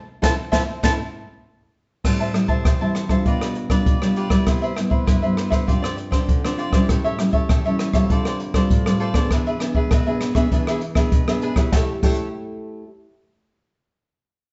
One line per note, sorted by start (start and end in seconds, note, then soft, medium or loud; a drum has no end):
0.22 0.32 A3 loud
0.22 0.32 C4 loud
0.22 0.32 E4 loud
0.22 0.32 A4 medium
0.22 0.32 C5 medium
0.22 0.32 E5 medium
0.22 0.33 A5 medium
0.22 kick medium
0.22 snare medium
0.52 0.63 A3 medium
0.52 0.62 C4 medium
0.52 0.63 E4 medium
0.52 0.62 A4 medium
0.52 0.62 C5 medium
0.52 0.62 E5 loud
0.52 0.62 A5 medium
0.52 kick medium
0.52 snare medium
0.83 0.94 A3 loud
0.83 0.94 C4 loud
0.83 0.94 E4 loud
0.83 0.93 A4 loud
0.83 0.93 C5 loud
0.83 0.93 E5 medium
0.83 0.93 A5 loud
0.83 kick medium
0.83 snare medium
2.04 2.62 A2 medium
2.04 2.30 G3 medium
2.04 2.30 C4 medium
2.04 2.31 E4 medium
2.04 2.19 G4 soft
2.04 2.19 C5 soft
2.04 2.19 E5 soft
2.04 2.19 A5 medium
2.04 kick medium
2.04 cross-stick medium
2.04 crash medium
2.20 2.33 C5 medium
2.20 2.34 E5 medium
2.20 2.34 A5 medium
2.20 closed hi-hat soft
2.34 2.63 G3 medium
2.34 2.63 C4 medium
2.34 2.64 E4 medium
2.34 muted cavaquinho stroke soft
2.34 cross-stick medium
2.34 closed hi-hat soft
2.48 2.64 C5 medium
2.48 2.64 E5 medium
2.48 2.63 A5 medium
2.48 kick medium
2.48 closed hi-hat soft
2.65 3.23 E3 medium
2.65 2.79 G4 soft
2.65 2.79 C5 medium
2.65 2.80 E5 medium
2.65 2.80 A5 medium
2.65 kick medium
2.65 cross-stick medium
2.65 closed hi-hat medium
2.81 3.06 G3 medium
2.81 3.06 C4 medium
2.81 3.06 E4 medium
2.81 3.10 C5 medium
2.81 3.09 E5 medium
2.81 3.08 A5 medium
2.81 closed hi-hat soft
2.95 cross-stick medium
2.95 closed hi-hat soft
3.09 3.66 G3 medium
3.09 3.66 D4 medium
3.09 3.66 F4 medium
3.09 3.25 C5 medium
3.09 3.25 E5 medium
3.09 3.24 A5 medium
3.09 kick medium
3.09 cross-stick medium
3.09 closed hi-hat soft
3.25 3.84 B2 medium
3.25 3.40 F4 medium
3.25 3.40 G4 medium
3.25 3.40 B4 medium
3.25 3.40 D5 medium
3.25 kick medium
3.25 closed hi-hat medium
3.41 3.55 G4 medium
3.41 3.56 B4 medium
3.41 3.55 D5 medium
3.41 cross-stick medium
3.41 closed hi-hat soft
3.55 muted cavaquinho stroke soft
3.55 closed hi-hat soft
3.70 3.96 G3 medium
3.70 3.97 D4 medium
3.70 3.97 F4 medium
3.70 4.01 G4 medium
3.70 4.00 B4 medium
3.70 4.00 D5 medium
3.70 kick medium
3.70 cross-stick medium
3.70 closed hi-hat soft
3.86 4.44 B2 medium
3.86 kick medium
3.86 closed hi-hat medium
4.02 4.27 G3 medium
4.02 4.27 D4 medium
4.02 4.27 F4 medium
4.02 4.16 G4 soft
4.02 4.17 B4 soft
4.02 4.16 D5 soft
4.02 cross-stick medium
4.16 4.31 F4 medium
4.16 4.31 G4 medium
4.16 4.30 B4 medium
4.16 4.29 D5 medium
4.16 closed hi-hat soft
4.30 4.72 G3 medium
4.30 4.72 B3 medium
4.30 4.72 E4 medium
4.30 4.46 G4 medium
4.30 4.46 B4 medium
4.30 4.45 D5 medium
4.30 kick medium
4.30 cross-stick medium
4.30 closed hi-hat soft
4.47 5.05 C3 medium
4.47 4.61 E4 medium
4.47 4.62 B4 medium
4.47 4.61 C5 soft
4.47 4.61 E5 medium
4.47 kick medium
4.47 cross-stick medium
4.47 closed hi-hat medium
4.62 4.75 B4 medium
4.62 4.75 C5 medium
4.62 4.76 E5 medium
4.62 closed hi-hat soft
4.76 5.18 G3 medium
4.76 5.18 B3 medium
4.76 5.19 E4 medium
4.76 muted cavaquinho stroke soft
4.76 cross-stick medium
4.76 closed hi-hat soft
4.90 5.06 B4 medium
4.90 5.06 C5 medium
4.90 5.05 E5 medium
4.90 kick medium
5.06 5.65 G2 medium
5.06 5.21 E4 medium
5.06 5.22 B4 medium
5.06 5.21 C5 medium
5.06 5.21 E5 medium
5.06 kick medium
5.06 cross-stick medium
5.06 closed hi-hat medium
5.22 5.64 G3 medium
5.22 5.64 B3 medium
5.22 5.64 E4 medium
5.22 5.50 B4 medium
5.22 5.51 C5 medium
5.22 5.49 E5 medium
5.22 closed hi-hat soft
5.37 cross-stick medium
5.37 closed hi-hat soft
5.50 5.66 B4 medium
5.50 5.67 C5 medium
5.50 5.66 E5 medium
5.50 kick medium
5.50 cross-stick medium
5.50 closed hi-hat soft
5.67 6.26 G2 medium
5.67 6.09 F3 medium
5.67 6.09 C4 medium
5.67 6.10 D4 medium
5.67 5.81 F4 medium
5.67 5.82 G4 medium
5.67 5.82 C5 medium
5.67 5.81 D5 medium
5.67 kick medium
5.67 closed hi-hat medium
5.82 5.96 G4 medium
5.82 5.96 C5 medium
5.82 5.97 D5 medium
5.82 cross-stick medium
5.97 muted cavaquinho stroke soft
5.97 closed hi-hat medium
6.11 6.39 F3 medium
6.11 6.39 C4 medium
6.11 6.39 D4 medium
6.11 6.42 G4 medium
6.11 6.42 C5 medium
6.11 6.41 D5 medium
6.11 kick medium
6.11 cross-stick medium
6.11 closed hi-hat soft
6.29 6.86 D3 medium
6.29 kick medium
6.29 closed hi-hat medium
6.44 6.70 F3 medium
6.44 6.70 C4 medium
6.44 6.70 D4 medium
6.44 6.57 G4 soft
6.44 6.58 C5 soft
6.44 6.58 D5 soft
6.44 cross-stick medium
6.44 closed hi-hat soft
6.58 6.72 F4 medium
6.58 6.73 G4 medium
6.58 6.73 C5 medium
6.58 6.72 D5 medium
6.58 closed hi-hat soft
6.73 7.14 G3 medium
6.73 7.14 C#4 medium
6.73 7.15 E4 medium
6.73 6.88 G4 medium
6.73 6.88 C5 medium
6.73 6.87 D5 medium
6.73 kick medium
6.73 cross-stick medium
6.73 closed hi-hat soft
6.89 7.47 A2 medium
6.89 7.03 G4 soft
6.89 7.04 A4 medium
6.89 7.04 C#5 medium
6.89 7.03 E5 soft
6.89 kick medium
6.89 cross-stick medium
6.89 closed hi-hat medium
7.04 7.18 A4 medium
7.04 7.19 C#5 medium
7.04 7.18 E5 medium
7.04 closed hi-hat soft
7.19 7.60 G3 medium
7.19 7.60 C#4 medium
7.19 7.60 E4 medium
7.19 muted cavaquinho stroke soft
7.19 cross-stick medium
7.19 closed hi-hat medium
7.33 7.48 A4 medium
7.33 7.48 C#5 medium
7.33 7.48 E5 medium
7.33 kick medium
7.33 closed hi-hat soft
7.49 8.07 E3 medium
7.49 7.64 G4 soft
7.49 7.64 A4 soft
7.49 7.64 C#5 medium
7.49 7.64 E5 medium
7.49 kick medium
7.49 cross-stick medium
7.49 closed hi-hat medium
7.65 7.91 G3 medium
7.65 7.91 C#4 medium
7.65 7.91 E4 medium
7.65 7.94 A4 medium
7.65 7.93 C#5 medium
7.65 7.93 E5 medium
7.65 closed hi-hat soft
7.79 cross-stick medium
7.79 closed hi-hat soft
7.93 8.50 G3 medium
7.93 8.50 C4 medium
7.93 8.51 F4 medium
7.93 8.09 A4 medium
7.93 8.09 C#5 medium
7.93 8.09 E5 medium
7.93 kick medium
7.93 cross-stick medium
7.93 closed hi-hat soft
8.09 8.67 D3 medium
8.09 8.24 F4 medium
8.09 8.25 A4 medium
8.09 8.25 C5 medium
8.09 8.25 D5 medium
8.09 kick medium
8.09 closed hi-hat medium
8.25 8.39 A4 medium
8.25 8.39 C5 medium
8.25 8.40 D5 medium
8.25 cross-stick medium
8.25 closed hi-hat soft
8.40 muted cavaquinho stroke soft
8.40 closed hi-hat medium
8.54 8.80 G3 medium
8.54 8.80 C4 medium
8.54 8.81 F4 medium
8.54 8.85 A4 medium
8.54 8.84 C5 medium
8.54 8.84 D5 medium
8.54 kick medium
8.54 cross-stick medium
8.54 closed hi-hat soft
8.70 9.28 A2 medium
8.70 kick medium
8.70 closed hi-hat medium
8.86 9.11 G3 medium
8.86 9.12 C4 medium
8.86 9.12 F4 medium
8.86 8.99 A4 soft
8.86 9.00 C5 soft
8.86 9.00 D5 medium
8.86 cross-stick medium
9.00 9.14 F4 medium
9.00 9.14 A4 medium
9.00 9.15 C5 medium
9.00 9.14 D5 medium
9.00 closed hi-hat soft
9.14 9.56 B3 medium
9.14 9.56 D4 medium
9.14 9.56 G#4 medium
9.14 9.30 A4 medium
9.14 9.30 C5 medium
9.14 9.29 D5 medium
9.14 kick medium
9.14 cross-stick medium
9.14 closed hi-hat soft
9.31 9.89 E3 medium
9.31 9.45 D4 soft
9.31 9.45 G#4 medium
9.31 9.46 B4 medium
9.31 9.46 E5 medium
9.31 kick medium
9.31 cross-stick medium
9.31 closed hi-hat medium
9.46 9.61 G#4 medium
9.46 9.61 B4 medium
9.46 9.60 E5 medium
9.46 closed hi-hat soft
9.60 9.89 B3 medium
9.60 9.89 D4 medium
9.60 9.90 G#4 medium
9.60 muted cavaquinho stroke soft
9.60 cross-stick medium
9.60 closed hi-hat soft
9.75 9.90 G#4 medium
9.75 9.90 B4 medium
9.75 9.90 E5 medium
9.75 kick medium
9.91 10.49 B2 medium
9.91 10.05 D4 medium
9.91 10.06 G#4 medium
9.91 10.06 B4 medium
9.91 10.05 E5 medium
9.91 kick medium
9.91 cross-stick medium
9.91 closed hi-hat medium
10.07 10.32 B3 medium
10.07 10.33 D4 medium
10.07 10.33 G#4 medium
10.07 10.37 G#4 medium
10.07 10.36 B4 medium
10.07 10.35 E5 medium
10.07 closed hi-hat soft
10.21 cross-stick medium
10.21 closed hi-hat soft
10.35 10.46 B3 medium
10.35 10.46 D4 medium
10.35 10.47 G#4 medium
10.35 10.51 G#4 medium
10.35 10.51 B4 medium
10.35 10.50 E5 medium
10.35 kick medium
10.35 cross-stick medium
10.35 closed hi-hat soft
10.52 11.09 E3 medium
10.52 10.80 B3 medium
10.52 10.80 D4 medium
10.52 10.66 D4 medium
10.52 10.81 G#4 medium
10.52 10.66 G#4 medium
10.52 10.67 B4 medium
10.52 10.67 E5 medium
10.52 kick medium
10.52 closed hi-hat medium
10.67 10.81 G#4 medium
10.67 10.81 B4 medium
10.67 10.81 E5 medium
10.67 cross-stick medium
10.81 muted cavaquinho stroke soft
10.81 closed hi-hat medium
10.95 11.22 B3 medium
10.95 11.22 D4 medium
10.95 11.22 G#4 medium
10.95 11.26 G#4 medium
10.95 11.26 B4 medium
10.95 11.25 E5 medium
10.95 kick medium
10.95 cross-stick medium
10.95 closed hi-hat soft
11.12 11.70 B2 medium
11.12 kick medium
11.12 closed hi-hat medium
11.27 11.53 B3 medium
11.27 11.53 D4 medium
11.27 11.53 G#4 medium
11.27 11.42 G#4 soft
11.27 11.42 B4 soft
11.27 11.42 E5 medium
11.27 cross-stick medium
11.27 closed hi-hat soft
11.42 11.56 D4 medium
11.42 11.57 G#4 medium
11.42 11.56 B4 medium
11.42 11.55 E5 medium
11.42 closed hi-hat medium
11.55 11.71 E4 medium
11.55 11.72 G4 medium
11.55 11.72 G#4 medium
11.55 11.72 B4 medium
11.55 11.73 C#5 medium
11.55 11.71 E5 medium
11.55 kick medium
11.55 cross-stick medium
11.55 closed hi-hat soft
11.72 12.01 A3 medium
11.72 12.03 E4 medium
11.72 11.91 G4 medium
11.72 12.03 G4 medium
11.72 11.92 A4 medium
11.72 12.04 C#5 medium
11.72 11.92 C#5 medium
11.72 11.92 E5 medium
11.72 kick medium
11.72 snare medium
12.02 12.84 A3 medium
12.02 12.84 E4 medium
12.02 12.27 G4 medium
12.02 12.84 G4 medium
12.02 12.27 A4 medium
12.02 12.28 C#5 medium
12.02 12.84 C#5 medium
12.02 12.28 E5 medium
12.02 kick medium
12.02 crash medium